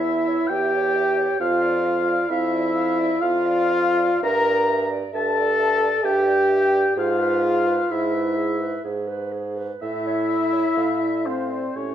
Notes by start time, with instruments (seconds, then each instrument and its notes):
Already playing: bassoon E2, french horn E4, oboe E5, flute E5
0.05 clarinet E5
0.28 clarinet C#5
0.47 bassoon E2, french horn G4, clarinet E5, oboe G5, flute G5
0.74 clarinet C#5
0.96 clarinet E5
1.18 clarinet C#5
1.40 bassoon F2, french horn F4, flute F5, oboe F5, clarinet F5
1.62 clarinet D5
1.85 clarinet F5
2.09 clarinet D5
2.28 bassoon F2, french horn E4, flute E5, oboe E5, clarinet F5
2.54 clarinet D5
2.75 clarinet F5
2.99 clarinet D5
3.21 bassoon F2, french horn F4, flute F5, oboe F5, clarinet F5
3.46 clarinet D5
3.73 clarinet F5
3.98 clarinet D5
4.22 bassoon G2, french horn A#4, clarinet E5, flute A#5, oboe A#5
4.45 clarinet D5
4.68 clarinet E5
4.91 clarinet D5
5.14 bassoon G2, french horn A4, clarinet E5, flute A5, oboe A5
5.37 clarinet D5
5.60 clarinet E5
5.81 clarinet D5
6.03 bassoon G2, french horn G4, clarinet E5, flute G5, oboe G5
6.26 clarinet D5
6.49 clarinet E5
6.74 clarinet D5
6.96 bassoon G#2, french horn F4, clarinet G#4, flute F5, oboe F5
7.20 clarinet B4
7.43 clarinet G#4
7.67 clarinet B4
7.89 bassoon G#2, french horn E4, clarinet G#4, flute E5, oboe E5
8.13 clarinet B4
8.37 clarinet G#4
8.61 clarinet B4
8.84 bassoon G#2, clarinet G#4
9.07 clarinet B4
9.33 clarinet G#4
9.57 clarinet B4
9.81 bassoon A2, french horn E4, flute E5, clarinet E5, oboe E5
10.06 clarinet C#5
10.30 clarinet E5
10.53 clarinet C#5
10.77 bassoon A2, clarinet F5
11.01 clarinet D5
11.25 french horn C4, flute C5, oboe C5, clarinet F5
11.50 clarinet D5
11.76 bassoon A2, french horn C#4, clarinet G4, flute C#5, oboe C#5